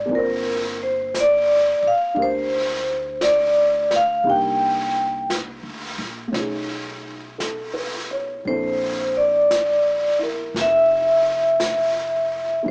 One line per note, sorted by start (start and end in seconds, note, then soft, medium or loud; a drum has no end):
0.00 0.09 C4 soft
0.00 0.11 D4 soft
0.00 0.10 D#4 soft
0.00 0.11 F#4 soft
0.00 0.15 D5 medium
0.05 1.77 G1 medium
0.05 4.23 A#3 soft
0.05 4.26 C4 soft
0.11 4.27 F4 soft
0.11 brush sweep soft
0.15 0.77 A#4 medium
0.15 4.30 C5 soft
0.83 1.17 C5 medium
1.15 brush sweep soft
1.15 snare soft
1.15 hi-hat pedal soft
1.20 1.87 D5 medium
1.83 muted upright bass stroke soft
1.87 2.21 F5 medium
2.14 4.21 D2 medium
2.14 4.23 D4 soft
2.14 4.24 G4 soft
2.14 4.26 A#4 soft
2.14 brush sweep soft
2.22 3.27 C5 medium
3.21 3.93 D5 medium
3.21 brush sweep soft
3.21 snare soft
3.21 hi-hat pedal soft
3.91 snare soft
3.96 4.30 F5 medium
4.24 5.60 C2 medium
4.24 6.34 A#3 soft
4.24 6.34 D4 soft
4.24 6.34 D#4 soft
4.24 6.34 G4 soft
4.24 brush sweep soft
4.30 5.28 G5 medium
5.30 brush sweep soft
5.30 snare soft
5.30 hi-hat pedal soft
5.63 5.96 D2 soft
5.98 6.31 A#1 medium
6.28 8.42 A3 soft
6.28 8.44 C#4 soft
6.33 8.40 B1 medium
6.33 8.46 D#4 soft
6.33 brush sweep soft
6.33 snare soft
6.39 8.48 G#4 soft
7.38 8.04 A4 soft
7.38 brush sweep soft
7.38 snare soft
7.38 hi-hat pedal soft
7.73 8.28 B4 soft
8.11 8.65 C#5 soft
8.45 10.51 A#1 medium
8.45 12.66 C4 soft
8.45 12.63 D4 soft
8.45 10.17 E4 soft
8.45 12.67 A4 soft
8.45 9.18 C5 medium
8.45 brush sweep soft
9.17 10.17 D5 medium
9.51 brush sweep soft
9.51 snare soft
9.51 hi-hat pedal soft
10.19 12.64 E4 soft
10.19 12.67 A#4 soft
10.54 12.61 F1 medium
10.54 brush sweep soft
10.54 snare soft
10.61 12.71 E5 medium
11.60 brush sweep soft
11.60 snare soft
11.60 hi-hat pedal medium
12.63 12.71 E1 medium
12.63 12.71 A#3 soft
12.63 12.71 D4 soft
12.63 12.71 E4 soft
12.63 12.71 G4 soft
12.63 brush sweep soft